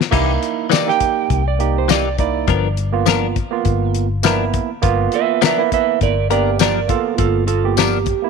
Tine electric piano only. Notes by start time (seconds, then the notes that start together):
0.11 A#3 D#4 E4
0.86 A#3 D#4 G4
1.59 A#3 D#4 G4
2.19 A#3 D#4 E4
2.92 A#3 B3 F4
3.51 A#3 B3 F4
4.23 A#3 B3 E4
4.82 A#3 B3 F4
5.58 A#3 B3 E4
6.30 A#3 B3 G4
6.88 A#3 B3 F4
7.64 A#3 B3 G4
8.22 A#3 B3 E4